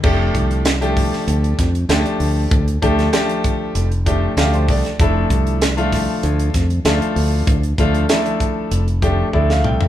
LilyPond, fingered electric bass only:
\new Staff \with { instrumentName = "Fingered electric bass" } { \clef bass \time 4/4 \key f \major \tempo 4 = 97 f,,8 c,4. d,8 f,8 d,16 r16 d,8 | d,8 d,8 r4 f,,4 d,8 c,16 r16 | f,,8 c,4. d,8 f,8 d,16 r16 d,8 | d,8 d,8 r4 f,,4 d,8 c,16 r16 | }